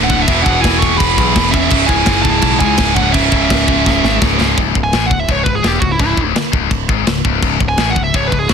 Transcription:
Already playing: D1 D2 A2 D3
0.04 D4 F#5
0.09 kick, crash
0.22 E5
0.27 E1 E2 B2 E3 B3, kick, crash
0.42 E1 D4 F#5, kick, crash
0.60 E1 E4 G#5
0.64 kick, snare, crash
0.77 A4 C#6
0.82 kick, crash
0.97 E1 G#4 B5, kick, crash
1.17 B1, kick, crash
1.35 E1, kick, snare, crash
1.51 E1 E3 C#4 E5, kick, crash
1.55 E2 B2
1.70 C#1 C#2 G#2 C#3, kick, crash
1.86 E4 G#5, kick, crash
2.06 F#1, kick, snare, crash
2.22 C#1 E4 A5, kick, crash
2.42 B1, kick, crash
2.60 C#2 E4 G#5, kick, crash
2.77 C#1, kick, snare, crash
2.93 C#3 D4 F#5, kick, crash
2.98 C#2 G#2
3.11 C#1 C#2 G#2 C#4 E5, kick, crash
3.16 C#3
3.31 C#1, kick, crash
3.50 C#1, kick, snare, crash
3.67 kick, crash
3.86 C#1, kick, snare
4.03 G#1, snare
4.21 C#1, kick, snare
4.39 C#1 G#2 C#3, snare
4.43 C#2
4.58 C#1 C#2, kick, china
4.75 C#1 C#2, kick
4.84 G#5
4.93 A1 A2, snare, china
5.06 C#1 F#5
5.10 C#2, kick
5.20 E5
5.28 C#1 C#2 C#5, kick, china
5.44 C#1 C#2 B4, kick
5.55 G#4
5.63 E1 E2, snare, china
5.67 G4
5.80 C#1 C#2 F#4, kick
5.92 E4
5.99 C#1 C#2 E4, kick, china
6.17 D1 D2, kick
6.35 muted distorted electric guitar stroke, muted picked electric bass stroke, snare, china
6.52 C#1 C#2, kick
6.69 C#1 C#2, kick, china
6.89 G#1 G#2, kick
7.07 C#1 C#2, snare, china
7.25 C#1 C#2, kick
7.42 C#1 C#2, kick, china
7.60 C#1 C#2, kick
7.69 G#5
7.77 A1 A2, snare, china
7.90 F#5
7.96 C#1 C#2, kick
8.04 E5
8.14 C#1 C#2 C#5, kick, china
8.27 B4
8.32 C#1 C#2, kick
8.39 G#4
8.49 E1 E2 F#4, snare, china

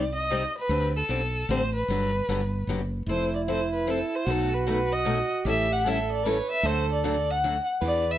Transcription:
Already playing: C2 D5
0.16 D#5
0.30 C3 G3 C4 D#4 G4 D5
0.58 B4
0.69 D2 D3 G3 C4 D4 G4
0.96 A4
1.09 B1 D3 G3 C4 D4 G4
1.49 A1 D3 G3 C4 D4 G4 C5
1.75 B4
1.88 G1 D3 F#3 B3 D4 G4
2.28 G1 D3 F#3 B3 D4 G4
2.67 F#1 D3 F#3 B3 D4 G4
3.06 F1 F3 C4 E4 A4 C5
3.35 D5
3.48 F3 C4 E4 A4 C5
3.74 B4
3.87 F3 C4 E4 A4
4.15 C5
4.26 B1 B2 F#3 A3 D#4 F#4
4.30 A4
4.54 B4
4.67 B2 F#3 A3 D#4 F#4 B4
4.93 D#5
5.05 B2 F#3 A3 D#4 F#4
5.44 A1 E3 G3 C#4 E4 G4 A4
5.49 E5
5.73 F#5
5.85 E3 G3 C#4 E4 A4 E5
6.12 D5
6.24 E3 G3 C#4 E4 A4 B4 C#5
6.52 E5
6.63 D2 D3 F#3 A3 D4 F#4 A4 C5
6.92 D5
7.04 D3 F#3 A3 D4 F#4 D5
7.31 F#5
7.44 D3 F#3 A3 D4 F#4
7.81 E2 E3 B3 D4 G4 B4
7.86 D5
8.11 E5

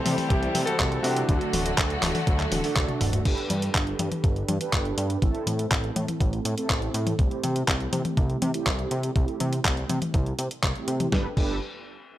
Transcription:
Already playing: E3 G3 A3 C4 E4 G4 A4 C5
0.06 C3, open hi-hat, high tom
0.18 open hi-hat, high tom
0.29 C2 E4 G4, kick, closed hi-hat
0.43 closed hi-hat
0.55 C3, open hi-hat, high tom
0.66 G3 C4 E4 F#4 A4, closed hi-hat
0.80 C2, kick, clap, closed hi-hat
0.92 closed hi-hat
1.03 C3 D4 F#4, open hi-hat
1.17 closed hi-hat
1.29 D2 D3 F#3 A3 D4 F#4 A4, kick, closed hi-hat
1.41 closed hi-hat
1.53 D1, open hi-hat, high tom
1.66 closed hi-hat
1.78 D2, kick, clap, closed hi-hat
1.90 closed hi-hat
2.02 D1, clap, open hi-hat, high tom
2.15 open hi-hat, high tom
2.27 D2, kick, closed hi-hat
2.39 clap, closed hi-hat
2.52 D1, open hi-hat, high tom
2.64 A3 D4 F#4 A4, open hi-hat
2.76 D2, kick, clap, closed hi-hat, mid tom
2.89 closed hi-hat, mid tom
3.01 D1, mid tom, open hi-hat
3.13 closed hi-hat, mid tom
3.25 G1 D4 G4 A4 B4, kick, closed hi-hat, crash
3.38 closed hi-hat
3.50 G2, closed hi-hat, high tom
3.62 closed hi-hat
3.75 G1, kick, clap, closed hi-hat
3.87 closed hi-hat
3.99 G2, closed hi-hat, high tom
4.12 closed hi-hat, high tom
4.24 G1, kick, closed hi-hat
4.36 closed hi-hat
4.48 G2, closed hi-hat, high tom
4.61 D4 G4 A4 B4, closed hi-hat
4.73 G1, kick, clap, closed hi-hat
4.85 closed hi-hat
4.98 G2, closed hi-hat
5.10 closed hi-hat
5.22 A1 A3 C4 E4 A4, kick, closed hi-hat
5.35 closed hi-hat
5.47 A2, closed hi-hat, high tom
5.59 closed hi-hat
5.71 A1, kick, clap, closed hi-hat
5.84 closed hi-hat
5.96 A2, closed hi-hat, high tom
6.08 closed hi-hat, high tom
6.21 A1, kick, closed hi-hat
6.33 closed hi-hat
6.45 A2, closed hi-hat
6.57 A3 C4 E4 A4, closed hi-hat
6.70 A1, kick, clap, closed hi-hat
6.82 closed hi-hat
6.94 A2, closed hi-hat
7.07 closed hi-hat, high tom
7.19 C2 A3 C4 E4 G4, kick, closed hi-hat
7.31 closed hi-hat
7.43 C3, closed hi-hat, high tom
7.56 closed hi-hat
7.68 C2, kick, clap, closed hi-hat
7.80 closed hi-hat
7.93 C3, closed hi-hat, high tom
8.05 closed hi-hat, high tom
8.17 C2, kick, closed hi-hat
8.30 closed hi-hat
8.42 C3, closed hi-hat, high tom
8.54 A3 C4 E4 G4, closed hi-hat
8.66 C2, kick, clap, closed hi-hat
8.79 closed hi-hat
8.91 C3, closed hi-hat
9.03 closed hi-hat
9.16 C2 A3 C4 E4 G4, kick, closed hi-hat
9.28 closed hi-hat
9.40 C3, closed hi-hat, high tom
9.53 closed hi-hat
9.65 C2, kick, clap, closed hi-hat
9.77 closed hi-hat
9.89 C3, closed hi-hat, high tom
10.02 closed hi-hat, high tom
10.14 C2, kick, closed hi-hat
10.26 closed hi-hat
10.39 C3, closed hi-hat
10.51 closed hi-hat
10.63 C2, kick, clap, closed hi-hat
10.75 A3 C4 E4 G4, closed hi-hat
10.88 C3, closed hi-hat
11.00 closed hi-hat, high tom
11.12 G1 D4 G4 A4 B4, kick, snare
11.37 G1 D4 G4 A4 B4, kick, crash

